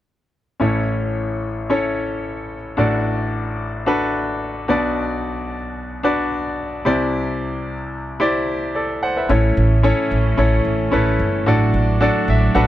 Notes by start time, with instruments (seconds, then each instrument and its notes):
0.60 grand piano A1 A2 C#4 E4 A4 C#5
1.70 grand piano C#4 E4 A4 C#5
2.77 grand piano A1 A2 D4 F#4 A4 D5
3.86 grand piano D4 F#4 A4 B4
4.68 grand piano B1 B2 D4 F#4 B4 D5
6.03 grand piano D4 F#4 B4 D5
6.85 grand piano C2 C3 E4 G4 C5 D5
8.20 grand piano E4 G4 C5 D5
8.75 grand piano A4 D5
9.03 grand piano C5 F#5
9.17 grand piano B4 E5
9.29 upright bass A1, grand piano A2 C#4 E4 A4 C#5, string section E3 A3 C#4
9.57 upright bass A1
9.83 grand piano C#4 E4 A4 C#5
10.11 upright bass A1
10.37 upright bass A1, grand piano C#4 E4 A4 C#5
10.65 upright bass A1
10.91 upright bass A1, grand piano C#4 E4 A4 B4
11.20 upright bass G1
11.46 upright bass A1, grand piano A2 D4 F#4 A4 D5, string section F#3 D4
11.74 upright bass A1
12.01 grand piano D4 F#4 A4 D5
12.28 upright bass A1, grand piano E5
12.54 upright bass A1, grand piano D4 F#4 A4 B4 F#5